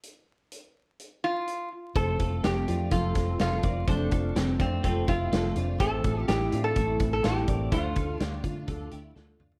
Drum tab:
HH |x---x---x---x---|x-x-x-x-x-x-x-x-|x-x-x-x-x-x-x-x-|x-x-x-x-x-x-x-x-|
SD |----------------|----o-----o-o---|----o-------o---|----o-------o---|
T2 |----------------|----------------|----------------|----------------|
FT |----------------|----------------|----------------|----------------|
BD |----------------|o-o-----o-o---o-|o-o---o-o-o-----|o-o-----o-o---o-|

HH |x-x-x-x-x-x-----|
SD |----o-------o---|
T2 |--------------o-|
FT |---------------o|
BD |o-o---o-o-------|